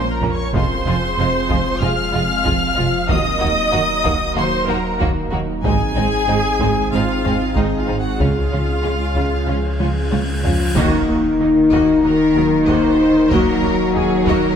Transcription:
Already playing: sub bass A#1, analog synth pad F3 C#4 F4 A#4, french horn section C#4 F4, viola section C5, violin section C6
0.12 viola section A#4, violin section A#5
0.21 double bass section A#1, cello section A#2, violin section A#3 C#4, synth pluck A#4, taiko low
0.32 viola section C#5, violin section C#6
0.54 double bass section F1, sub bass F1, cello section F2, synth pluck F3, violin section G#3 F4 C6, french horn section G#3, analog synth pad C4 G#4, viola section C5, taiko
0.86 double bass section F1, cello section F2, violin section G#3 F4
1.18 double bass section F1, cello section F2, violin section G#3 F4, synth pluck C4
1.49 double bass section F1, cello section F2, synth pluck F3, violin section G#3 F4, taiko
1.81 double bass section F1, cello section F2, violin section G#3 F4 F6, synth pluck G#3, viola section F5
2.14 double bass section F1, cello section F2, violin section G#3 F4, synth pluck G#3
2.44 double bass section F1, cello section F2, synth pluck F3, violin section G#3 F4, taiko
2.77 double bass section F1, cello section F2, violin section G#3 F4, synth pluck F4
3.08 sub bass D#1, cello section D#2, double bass section D#2, synth pluck D#3, analog synth pad F#3 A#3 D#4 A#4, violin section A#3 F#4 D#6, french horn section A#3 F#4, viola section D#5, taiko
3.40 cello section D#2, double bass section D#2, violin section A#3 F#4
3.71 cello section D#2, double bass section D#2, violin section A#3 F#4, synth pluck A#3
4.03 cello section D#2, double bass section D#2, synth pluck D#3, violin section A#3 F#4, taiko
4.36 cello section D#2, double bass section D#2, synth pluck F#3, violin section A#3 F#4 C6, viola section C5
4.68 cello section D#2, double bass section D#2, synth pluck F#3, violin section A#3 F#4 A#5, viola section A#4
5.00 cello section D#2, double bass section D#2, synth pluck D#3, violin section A#3 F#4, taiko
5.31 cello section D#2, double bass section D#2, violin section A#3 F#4, synth pluck D#4
5.64 double bass section G#1, sub bass G#1, cello section G#2, synth pluck G#3, analog synth pad G#3 C4 G#4, violin section C4 D#4 G#5, french horn section C4 G#4, viola section G#4, taiko
5.95 double bass section G#1, cello section G#2, violin section C4 D#4
6.27 double bass section G#1, cello section G#2, violin section C4 D#4, synth pluck D#4
6.60 double bass section G#1, cello section G#2, synth pluck G#3, violin section C4 D#4, taiko
6.92 double bass section G#1, cello section G#2, synth pluck C4, violin section C4 D#4 F5, viola section F4
7.24 double bass section G#1, cello section G#2, synth pluck C4, violin section C4 D#4, taiko low
7.55 double bass section G#1, cello section G#2, synth pluck G#3, violin section C4 D#4 D#5, viola section D#4, taiko
7.77 viola section F4, violin section F5
7.88 double bass section G#1, cello section G#2, violin section C4 D#4, synth pluck G#4
7.99 viola section F#4, violin section F#5
8.20 double bass section C#2, sub bass C#2, cello section C#3, synth pluck C#3, violin section C#4 F4 F5, analog synth pad C#4 F4, french horn section C#4, viola section F4, taiko, cymbal swell
8.52 double bass section C#2, cello section C#3, violin section C#4 F4
8.82 double bass section C#2, cello section C#3, synth pluck G#3, violin section C#4 F4
9.16 double bass section C#2, cello section C#3, synth pluck C#3, violin section C#4 F4, taiko
9.48 double bass section C#2, cello section C#3, synth pluck F3, violin section C#4 F4
9.80 double bass section C#2, cello section C#3, synth pluck F3, violin section C#4 F4, taiko high
10.11 double bass section C#2, cello section C#3, synth pluck C#3, violin section C#4 F4, taiko high
10.43 double bass section C#2, cello section C#3 F3, violin section C#4 F4, synth pluck C#4, french horn section F4, taiko low
10.75 sub bass D#1, double bass section D#2, cello section D#3, synth pluck D#3, analog synth pad D#3 A#3 D#4 A#4, viola section A#3 F#4, french horn section D#4, violin section D#5, taiko, impact
11.07 double bass section D#2, viola section A#3 F#4, synth pluck A#3, violin section D#5
11.39 double bass section D#2, viola section A#3 D#4, synth pluck D#4, violin section A#4
11.71 double bass section D#2, synth pluck D#3, viola section A#3 F#4, violin section D#5, taiko
12.03 double bass section D#2, cello section D#3, viola section A#3 F#4, synth pluck A#3, french horn section D#4, violin section A#4 D#5
12.35 double bass section D#2, synth pluck F#3, viola section A#3 D#4, violin section A#4
12.67 double bass section D#2, synth pluck D#3, viola section A#3 F#4, violin section C5 D#5, taiko
13.30 double bass section D#2, synth pluck D#3, cello section F#3, viola section A#3 F#4, french horn section F#4, violin section A#4 D#5, taiko
13.62 double bass section D#2, viola section A#3 F#4, synth pluck A#3, violin section D#5
13.94 double bass section D#2, viola section A#3 D#4, synth pluck D#4, violin section G#4 A#4
14.26 double bass section D#2, synth pluck D#3, viola section A#3 F#4, violin section A#4 D#5, taiko

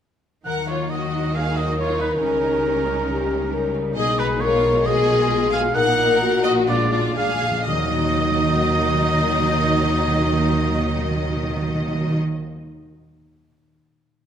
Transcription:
0.45 double bass section D#2, timpani D#3, harp D#3, cello section D#3, viola section F#3 D#4, violin section A#4 F#5, oboe F#5
0.67 violin section F4 C#5, harp F#4, oboe C#5
0.90 harp D#4, violin section F#4 D#5, oboe D#5
1.13 harp F#4
1.35 harp A#3, violin section G#4 F5, french horn section A#4, oboe F5
1.56 harp F#4, violin section F#4 D#5, oboe D#5
1.77 harp D#4, violin section F4 C#5, oboe C#5
2.00 violin section D#4 B4, harp F#4, oboe B4
2.21 double bass section C#2, harp C#3, cello section C#3, viola section G3, violin section C#4 A#4, oboe A#4
2.43 harp D#4
2.64 harp A#3
2.86 harp D#4
3.08 harp C#3, french horn section G4
3.30 harp A#3
3.52 harp G3, french horn section A#4
3.74 harp D#4
3.96 double bass section B1, cello section B2, harp B2, viola section G#3 D#4, violin section G#4 D#5, french horn section G#4, oboe D#5
4.18 violin section D#4 B4, harp D#4, oboe B4
4.39 harp G#3, violin section F4 C#5, french horn section A#4, oboe C#5
4.64 harp D#4
4.83 harp B2, viola section F4, violin section G#4 D#5, french horn section G#4, oboe D#5
5.08 harp F4
5.29 harp G#3, french horn section G#4
5.51 harp F4, violin section G#4 F5, oboe F5
5.74 double bass section A#1, cello section A#2, harp A#2, viola section A#3 D#4, violin section A#4 F#5, french horn section A#4, oboe F#5
5.98 harp D#4
6.21 harp A#3, french horn section F#4
6.43 harp D#4, violin section F#4 D#5, oboe D#5
6.67 timpani A#2, harp A#2, viola section G#3 D4, violin section F4 D5, french horn section F4, oboe D5
6.91 harp D4, violin section F4 D5, oboe D5
7.00 timpani A#2
7.09 timpani A#2
7.16 timpani A#2, harp A#3, french horn section D4, violin section G#4 F5, oboe F5
7.26 timpani A#2
7.34 timpani A#2
7.41 timpani A#2, harp D4
7.51 timpani A#2
7.66 double bass section D#2, cello section D#3, harp D#3, timpani D#3, viola section F#3 D#4, french horn section A#3 F#4, violin section D#5, oboe D#5
7.72 timpani D#3, harp A#3
7.78 timpani D#3, harp D#4
7.85 timpani D#3, harp F#4
7.91 timpani D#3, harp D#5
7.98 timpani D#3
8.05 timpani D#3
8.11 timpani D#3
8.18 timpani D#3
8.25 timpani D#3
8.31 timpani D#3
8.38 timpani D#3
8.44 timpani D#3
8.50 timpani D#3
8.56 timpani D#3
8.69 timpani D#3
8.76 timpani D#3
8.82 timpani D#3
8.88 timpani D#3
8.95 timpani D#3
9.01 timpani D#3
9.14 timpani D#3
9.21 timpani D#3
9.27 timpani D#3
9.33 timpani D#3
9.39 timpani D#3
9.45 timpani D#3
9.52 timpani D#3
9.58 timpani D#3
9.64 timpani D#3
9.70 timpani D#3
9.76 timpani D#3
9.82 timpani D#3
9.89 timpani D#3
9.94 timpani D#3
10.01 timpani D#3
10.08 timpani D#3
10.14 timpani D#3
10.20 timpani D#3
10.27 timpani D#3
10.33 timpani D#3
10.39 timpani D#3
10.46 timpani D#3
10.53 timpani D#3
10.59 timpani D#3
10.66 timpani D#3
10.72 timpani D#3
10.79 timpani D#3
10.85 timpani D#3
10.92 timpani D#3
10.98 timpani D#3
11.04 timpani D#3
11.11 timpani D#3
11.17 timpani D#3
11.24 timpani D#3
11.29 timpani D#3
11.37 timpani D#3
11.43 timpani D#3
11.50 timpani D#3
11.56 timpani D#3
11.62 timpani D#3
11.68 timpani D#3
11.75 timpani D#3
11.81 timpani D#3
11.88 timpani D#3
11.95 timpani D#3
12.01 timpani D#3
12.07 timpani D#3
12.13 timpani D#3

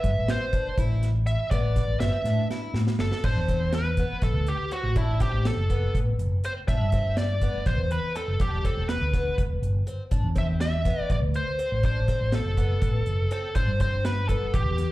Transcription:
Already playing: twelve-string acoustic guitar B3, lead electric guitar E5
0.04 fretless electric bass G2, kick, closed hi-hat
0.15 fretless electric bass A1
0.28 twelve-string acoustic guitar C4, lead electric guitar C5, snare, closed hi-hat
0.53 twelve-string acoustic guitar D4, kick, closed hi-hat
0.78 fretless electric bass A1, twelve-string acoustic guitar E4, kick, closed hi-hat
1.03 snare, closed hi-hat
1.27 lead electric guitar E5, closed hi-hat
1.51 fretless electric bass A1, twelve-string acoustic guitar B3, lead electric guitar D5, kick, closed hi-hat
1.76 kick, snare, closed hi-hat
1.88 fretless electric bass A1
2.00 fretless electric bass G1, twelve-string acoustic guitar C4, lead electric guitar E5, snare, closed hi-hat
2.24 fretless electric bass A2, twelve-string acoustic guitar D4, snare, closed hi-hat
2.50 twelve-string acoustic guitar E4, snare
2.74 fretless electric bass A2, snare
2.87 snare
2.98 fretless electric bass G1, lead electric guitar A4, snare
3.12 snare
3.24 fretless electric bass A1, twelve-string acoustic guitar D4, lead electric guitar C5, kick, crash
3.36 fretless electric bass E2
3.48 twelve-string acoustic guitar C4, kick, closed hi-hat
3.73 lead electric guitar B4, snare, closed hi-hat
3.97 twelve-string acoustic guitar B3, kick, closed hi-hat
4.22 fretless electric bass A1, lead electric guitar A4, kick, snare, closed hi-hat
4.34 fretless electric bass D2
4.47 lead electric guitar G4, closed hi-hat
4.71 twelve-string acoustic guitar C4, lead electric guitar F#4, closed hi-hat
4.83 fretless electric bass A1
4.96 twelve-string acoustic guitar D4, lead electric guitar E4, kick, closed hi-hat
5.20 twelve-string acoustic guitar C4, lead electric guitar G4, kick, snare, closed hi-hat
5.32 fretless electric bass A1
5.45 lead electric guitar A4, snare, closed hi-hat
5.57 fretless electric bass F#1
5.70 twelve-string acoustic guitar B3, kick, closed hi-hat
5.95 fretless electric bass A1, kick, closed hi-hat
6.18 fretless electric bass F#1, closed hi-hat
6.44 twelve-string acoustic guitar C4, lead electric guitar C5, closed hi-hat
6.68 fretless electric bass A1, twelve-string acoustic guitar D4, lead electric guitar E5, kick, closed hi-hat
6.80 fretless electric bass G2
6.92 twelve-string acoustic guitar C4, kick, closed hi-hat
7.17 lead electric guitar D5, snare, closed hi-hat
7.41 twelve-string acoustic guitar B3, kick, closed hi-hat
7.66 fretless electric bass A1, lead electric guitar C5, kick, snare, closed hi-hat
7.78 fretless electric bass E2
7.91 lead electric guitar B4, closed hi-hat
8.15 twelve-string acoustic guitar C4, lead electric guitar A4, closed hi-hat
8.28 fretless electric bass F#1
8.40 fretless electric bass E1, twelve-string acoustic guitar D4, lead electric guitar G4, kick, closed hi-hat
8.65 twelve-string acoustic guitar C4, lead electric guitar A4, kick, closed hi-hat
8.77 fretless electric bass E1
8.89 lead electric guitar B4, snare, closed hi-hat
9.01 fretless electric bass D2
9.13 twelve-string acoustic guitar B3, kick, snare, closed hi-hat
9.38 fretless electric bass E1, kick, closed hi-hat
9.62 fretless electric bass G1, closed hi-hat
9.87 twelve-string acoustic guitar C4, closed hi-hat
10.11 fretless electric bass A1, twelve-string acoustic guitar D4, kick, closed hi-hat
10.24 fretless electric bass E2
10.36 twelve-string acoustic guitar C4, lead electric guitar E5, kick, closed hi-hat
10.61 lead electric guitar E5, snare, closed hi-hat
10.85 twelve-string acoustic guitar B3, kick, snare, closed hi-hat
11.10 fretless electric bass A1, lead electric guitar D5, kick, closed hi-hat
11.22 fretless electric bass D2
11.34 lead electric guitar C5, closed hi-hat
11.59 twelve-string acoustic guitar C4, closed hi-hat
11.72 fretless electric bass A1
11.83 twelve-string acoustic guitar D4, lead electric guitar C5, kick, closed hi-hat
12.08 twelve-string acoustic guitar C4, kick, snare, closed hi-hat
12.21 fretless electric bass A1
12.32 lead electric guitar A4, snare, closed hi-hat
12.46 fretless electric bass F#1
12.57 twelve-string acoustic guitar B3, kick, closed hi-hat
12.82 fretless electric bass A1, kick, closed hi-hat
13.06 fretless electric bass F#1, closed hi-hat
13.31 twelve-string acoustic guitar C4, lead electric guitar A4, closed hi-hat
13.55 fretless electric bass A1, twelve-string acoustic guitar D4, lead electric guitar C5, kick, closed hi-hat
13.67 fretless electric bass G2
13.80 twelve-string acoustic guitar C4, lead electric guitar C5, kick, closed hi-hat
14.05 lead electric guitar B4, snare, closed hi-hat
14.29 twelve-string acoustic guitar B3, lead electric guitar A4, kick, closed hi-hat
14.54 fretless electric bass A1, lead electric guitar G4, kick, closed hi-hat
14.66 fretless electric bass E2
14.78 snare, closed hi-hat

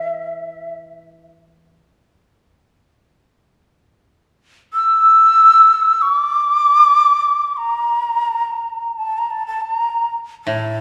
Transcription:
Already playing: koto E3, shakuhachi E5
4.74 shakuhachi E6
6.02 shakuhachi C#6
6.13 shakuhachi D6
7.48 shakuhachi D6
7.57 shakuhachi A#5
8.98 shakuhachi A5
9.18 shakuhachi A#5
9.30 shakuhachi A5
9.47 shakuhachi A5
9.61 shakuhachi A5
9.74 shakuhachi A#5
10.44 koto A2, shakuhachi A5

